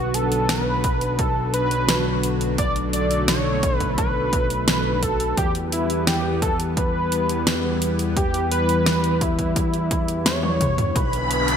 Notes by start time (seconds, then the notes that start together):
Already playing: B1 D3 F#3 B3 F#4
0.14 A4, closed hi-hat
0.32 closed hi-hat
0.49 B4, snare, closed hi-hat
0.84 kick, closed hi-hat
1.01 closed hi-hat
1.19 A4, kick, closed hi-hat
1.54 B4, closed hi-hat
1.71 closed hi-hat
1.89 snare, closed hi-hat
2.23 closed hi-hat
2.41 closed hi-hat
2.58 A3 D5, kick, closed hi-hat
2.76 closed hi-hat
2.93 D5, closed hi-hat
3.11 closed hi-hat
3.28 C#5, snare, closed hi-hat
3.63 kick, closed hi-hat
3.77 B4, kick, closed hi-hat
3.98 B4, kick, closed hi-hat
4.33 kick, closed hi-hat
4.50 closed hi-hat
4.68 B4, snare, closed hi-hat
5.03 A4, kick, closed hi-hat
5.20 closed hi-hat
5.37 E2 E3 G3 B3 G4, kick, closed hi-hat
5.55 closed hi-hat
5.72 E4, closed hi-hat
5.90 closed hi-hat
6.07 G4, snare, closed hi-hat
6.42 A4, kick, closed hi-hat
6.60 closed hi-hat
6.77 B4, kick, closed hi-hat
7.12 closed hi-hat
7.29 closed hi-hat
7.47 snare, closed hi-hat
7.82 closed hi-hat
7.99 closed hi-hat
8.17 G4, kick, closed hi-hat
8.34 closed hi-hat
8.52 B4, closed hi-hat
8.69 closed hi-hat
8.86 snare, closed hi-hat
9.04 closed hi-hat
9.21 E4, kick, closed hi-hat
9.39 kick, closed hi-hat
9.56 kick, closed hi-hat
9.74 closed hi-hat
9.91 kick, closed hi-hat
10.08 closed hi-hat
10.26 C#5, snare, closed hi-hat, high tom
10.43 high tom
10.61 kick, closed hi-hat, mid tom
10.78 closed hi-hat, mid tom
10.96 B1 D3 B3 B4 B5, kick, closed hi-hat, riser
11.13 closed hi-hat
11.31 closed hi-hat
11.48 closed hi-hat